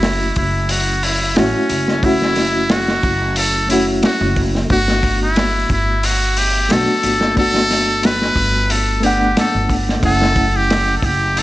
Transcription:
Already playing: upright bass F#1, reed electric piano A3 C#4 E4 F#4, muted trumpet E4
0.03 snare, open hi-hat
0.36 upright bass F#1, muted trumpet E4, kick, open hi-hat
0.69 muted trumpet F#4, open hi-hat
1.03 muted trumpet E4, open hi-hat
1.35 upright bass A1, reed electric piano A3 C#4 E4 F#4, muted trumpet C#4, snare, open hi-hat
1.69 upright bass F#1, open hi-hat
1.88 snare
2.00 reed electric piano A3 C#4 E4, kick, open hi-hat
2.04 muted trumpet E4, reed electric piano F#4
2.22 snare
2.36 snare, open hi-hat
2.69 muted trumpet F#4, snare, open hi-hat
2.88 snare
3.03 upright bass F#1, kick, open hi-hat
3.36 muted trumpet A4, open hi-hat
3.67 reed electric piano A3 C#4 E4, open hi-hat
3.71 muted trumpet E4, reed electric piano F#4
4.03 muted trumpet F#4, snare, open hi-hat
4.21 upright bass F#1
4.36 kick, open hi-hat
4.55 snare
4.67 upright bass G1, reed electric piano A3 B3 D4, kick, open hi-hat
4.72 muted trumpet F#4, reed electric piano F#4
4.88 snare
5.03 kick, open hi-hat
5.23 muted trumpet E4
5.36 snare, open hi-hat
5.70 upright bass G1, muted trumpet E4, kick, open hi-hat
6.03 muted trumpet F#4, open hi-hat
6.36 muted trumpet G4, open hi-hat
6.69 upright bass B1, reed electric piano A3 B3 D4 F#4, muted trumpet A4, snare, open hi-hat
7.03 upright bass G1, open hi-hat
7.21 snare
7.34 reed electric piano A3 B3 D4, muted trumpet A4, kick, open hi-hat
7.40 reed electric piano F#4
7.54 snare
7.71 snare, open hi-hat
8.03 muted trumpet B4, snare, open hi-hat
8.22 snare
8.36 upright bass G1, kick, open hi-hat
8.70 muted trumpet A4, open hi-hat
9.00 reed electric piano A3 B3, muted trumpet G4, open hi-hat
9.04 reed electric piano D4 F#5
9.37 muted trumpet A4, snare, open hi-hat
9.55 upright bass G1
9.70 kick, open hi-hat
9.89 snare
10.00 upright bass F#1, reed electric piano A3 C#4 E4, kick, open hi-hat
10.05 muted trumpet A4, reed electric piano F#5
10.22 snare
10.36 kick, open hi-hat
10.56 muted trumpet G4
10.70 snare, open hi-hat
10.97 muted trumpet A4
11.02 upright bass F#1, muted trumpet G4, kick, open hi-hat
11.37 muted trumpet A4, open hi-hat

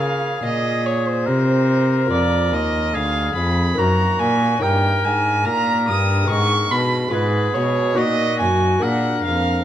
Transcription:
Already playing: lute C#3 A#3 F4 A#4, cello C#3, violin F5
0.00 oboe G#4
0.43 lute A#2, cello A#2, violin D#5
0.86 violin C#5
1.08 violin C5
1.26 cello C3, lute C3, oboe A#4
2.06 cello F2, lute A#3 F4 A#4
2.11 lute F2, violin D5
2.51 cello D#2, lute D#2, violin D#5
2.93 cello D2, lute D2, oboe G#4, violin F5
3.35 cello F2, lute F2, violin B5
3.74 cello F#2, lute A#3 D#4 A#4, oboe F#4
3.78 lute F#2, violin A#5
4.19 cello A#2, lute A#2, violin G#5
4.58 cello G2, lute C#4 D#4 A#4
4.62 lute G2, oboe A#4, violin G5
5.03 cello G#2, lute G#2, violin G#5
5.45 cello A#2, lute A#2, oboe A#4, violin A#5
5.88 cello G2, lute G2, violin D#6
6.24 lute G#3 B3 D#4
6.29 cello G#2, lute G#2 G#4, violin C#6
6.71 cello B2, lute B2, violin B5
7.08 lute G#3 B3 F4
7.12 cello G#2, lute G#2 G#4, oboe G#4, violin B4
7.54 cello B2, lute B2, violin C#5
7.93 cello A#2, lute A#3 D#4 F#4, oboe F#4
7.97 lute A#2, violin D#5
8.40 cello F#2, lute F#2, violin G#5
8.79 cello A#2, lute A#3 D4 G#4, oboe A#4, violin F#5
8.84 lute A#2
9.24 cello F2, lute F2, violin F5

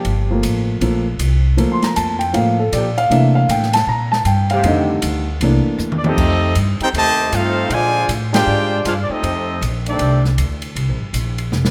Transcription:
Already playing: trombone section F3 A#3 D4 G4, grand piano A5
0.05 upright bass G1, ride
0.30 grand piano F3 A3 A#3
0.43 upright bass A1, hi-hat pedal, ride
0.81 upright bass A#1, grand piano F3 A3 A#3, ride
1.19 upright bass C2, hi-hat pedal, ride
1.57 upright bass D2, grand piano F3 A3 A#3, ride
1.72 grand piano C6
1.82 grand piano A#5, muted upright bass stroke, snare, ride
1.96 upright bass F2, grand piano A5, hi-hat pedal, ride
2.19 grand piano G5, ride
2.33 upright bass A2, grand piano F3 A3 A#3 F5, ride
2.59 grand piano A4
2.72 upright bass A#2, trombone section F3 A#3 D4 G4, grand piano D5, hi-hat pedal, ride
2.98 grand piano F5, ride
3.10 upright bass C3, grand piano E3 A3 A#3 D4 E5, ride
3.35 grand piano F5
3.49 upright bass A2, grand piano G5, hi-hat pedal, ride
3.63 snare
3.73 grand piano A5, snare, ride
3.87 upright bass A#2, grand piano A#5
4.12 grand piano A5, snare
4.25 upright bass G2, grand piano G5, hi-hat pedal, ride
4.50 trombone section C3 A3 C4 G4, grand piano F5, ride
4.63 upright bass F2, grand piano D3 D#3 G3 A3 D#5, ride
5.02 upright bass D2, hi-hat pedal, ride
5.41 upright bass C2, grand piano E3 A3 A#3 D4, ride
5.66 muted upright bass stroke
5.78 upright bass E2, hi-hat pedal
5.92 mid tom
5.97 trumpet section D5
6.04 trombone section F2 D#3 A3 C4 D#4 G4, trumpet section C4 G4 A4 D#5, mid tom
6.17 upright bass F2, kick, crash
6.55 upright bass G2, hi-hat pedal, ride
6.80 trombone section C4 D#4 G4, trumpet section D#4 A4 C5 G5, muted upright bass stroke, ride
6.93 upright bass D#2, trombone section C3 D#3 A3, trumpet section G4 C5 D#5, ride
6.97 trumpet section A5
7.32 upright bass G2, trombone section A3 C4 F4, trumpet section D#4 A4 C5 F5, hi-hat pedal, ride
7.70 upright bass A#2, trombone section D3 F3 G#3, trumpet section F4 C5 D5 G#5, ride
8.09 upright bass A2, hi-hat pedal, ride
8.33 trombone section G#3 D4 G4, trumpet section F4 C5 D5 G5, snare, ride
8.47 upright bass G#2
8.85 upright bass G2, trombone section G#3 D4 F4, trumpet section D4 G#4 C5 F5, hi-hat pedal, ride
9.02 trumpet section D5
9.09 trombone section A3 C4 D#4, trumpet section C4 G4 A4 D#5, muted upright bass stroke
9.23 upright bass F2, ride
9.61 upright bass A#1, hi-hat pedal, ride
9.86 trombone section D#3 A3 D4, trumpet section C4 G4 A4 D5, ride
9.99 upright bass C2, ride
10.25 snare
10.38 upright bass D2, hi-hat pedal, ride
10.62 ride
10.75 upright bass C2, ride
10.89 upright bass A#1
11.00 upright bass G1
11.13 upright bass A#1, hi-hat pedal, ride
11.38 ride
11.52 upright bass F1, snare
11.65 snare

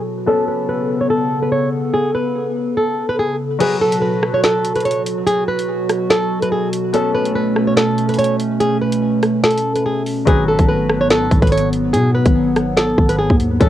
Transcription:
Already playing: ambient pad B2 F#3 F#4, felt piano F#3 F#4 B4
0.26 ambient pad C#3 B3 A4, felt piano B3 C#4 A4, nylon-string guitar A4
0.48 nylon-string guitar B4
0.69 nylon-string guitar B4
1.01 nylon-string guitar C#5
1.10 nylon-string guitar A4
1.42 nylon-string guitar B4
1.52 nylon-string guitar C#5
1.94 nylon-string guitar G#4
2.15 nylon-string guitar B4
2.77 nylon-string guitar A4
3.09 nylon-string guitar B4
3.19 nylon-string guitar G#4
3.59 ambient pad B2 F#3 F#4, felt piano F#3 F#4 B4, nylon-string guitar G#4, closed hi-hat, crash
3.82 nylon-string guitar A4
3.92 closed hi-hat
4.02 nylon-string guitar B4
4.23 cross-stick
4.34 nylon-string guitar C#5
4.44 nylon-string guitar A4, snare, closed hi-hat
4.65 closed hi-hat
4.76 nylon-string guitar B4, closed hi-hat
4.81 closed hi-hat
4.85 nylon-string guitar C#5, closed hi-hat
4.91 closed hi-hat
5.06 closed hi-hat
5.27 nylon-string guitar G#4, closed hi-hat
5.48 nylon-string guitar B4
5.59 closed hi-hat
5.89 cross-stick, closed hi-hat
6.10 nylon-string guitar A4, snare, closed hi-hat
6.42 nylon-string guitar B4, closed hi-hat
6.52 nylon-string guitar G#4
6.73 closed hi-hat
6.93 ambient pad A3 C#4, felt piano B3 C#4 A4, nylon-string guitar A4, closed hi-hat
7.15 nylon-string guitar B4
7.26 closed hi-hat
7.35 nylon-string guitar B4
7.56 cross-stick
7.67 nylon-string guitar C#5
7.77 nylon-string guitar A4, snare, closed hi-hat
7.98 closed hi-hat
8.09 nylon-string guitar B4, closed hi-hat
8.14 closed hi-hat
8.19 nylon-string guitar C#5, closed hi-hat
8.24 closed hi-hat
8.40 closed hi-hat
8.60 nylon-string guitar G#4, closed hi-hat
8.81 nylon-string guitar B4
8.92 closed hi-hat
9.23 cross-stick, closed hi-hat
9.44 nylon-string guitar A4, snare, closed hi-hat
9.51 closed hi-hat
9.58 closed hi-hat
9.76 nylon-string guitar B4, closed hi-hat
9.86 nylon-string guitar G#4
10.06 open hi-hat
10.25 808-style bass G#1, ambient pad G#2 F#3 B3, felt piano F#3 F#4 B4, nylon-string guitar G#4, kick, closed hi-hat
10.48 nylon-string guitar A4
10.59 808-style bass G#1, kick, closed hi-hat
10.69 nylon-string guitar B4
10.90 cross-stick
11.01 nylon-string guitar C#5
11.10 nylon-string guitar A4, snare, closed hi-hat
11.31 808-style bass G#1, kick, closed hi-hat
11.42 808-style bass G#1, nylon-string guitar B4, kick, closed hi-hat
11.47 closed hi-hat
11.52 nylon-string guitar C#5, closed hi-hat
11.58 closed hi-hat
11.73 closed hi-hat
11.93 808-style bass B2, nylon-string guitar G#4, closed hi-hat
12.15 nylon-string guitar B4
12.26 808-style bass G#1, kick, closed hi-hat
12.56 cross-stick, closed hi-hat
12.77 nylon-string guitar A4, snare, closed hi-hat
12.98 808-style bass G#1, kick
13.09 nylon-string guitar B4, closed hi-hat
13.19 nylon-string guitar G#4
13.30 808-style bass D#2, kick
13.40 closed hi-hat
13.60 808-style bass A1, ambient pad A2 C#3, felt piano B3 C#4 A4, nylon-string guitar A4, kick, closed hi-hat

